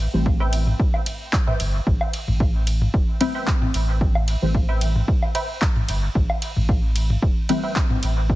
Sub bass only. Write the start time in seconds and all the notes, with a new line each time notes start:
0.13 A1
1.60 G1
1.87 A1
2.28 A1
2.94 E1
3.74 A1
4.42 A1
5.89 G1
6.15 A1
6.56 A1
7.22 E1
8.03 A1